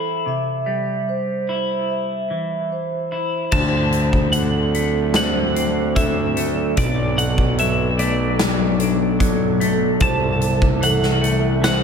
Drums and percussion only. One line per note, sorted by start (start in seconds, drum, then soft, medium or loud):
3.52 kick medium
3.52 crash medium
3.92 closed hi-hat soft
4.13 kick medium
4.33 closed hi-hat medium
4.74 closed hi-hat soft
5.14 snare medium
5.14 closed hi-hat medium
5.56 closed hi-hat medium
5.96 kick medium
5.96 closed hi-hat medium
6.37 closed hi-hat soft
6.77 kick medium
6.77 closed hi-hat medium
7.19 closed hi-hat soft
7.38 kick medium
7.58 closed hi-hat medium
7.99 closed hi-hat soft
8.39 snare medium
8.39 closed hi-hat medium
8.80 closed hi-hat soft
9.20 kick medium
9.20 closed hi-hat medium
9.61 closed hi-hat soft
10.00 kick medium
10.00 closed hi-hat medium
10.41 closed hi-hat soft
10.62 kick medium
10.83 closed hi-hat medium
11.03 snare soft
11.24 closed hi-hat soft
11.64 snare medium
11.64 closed hi-hat medium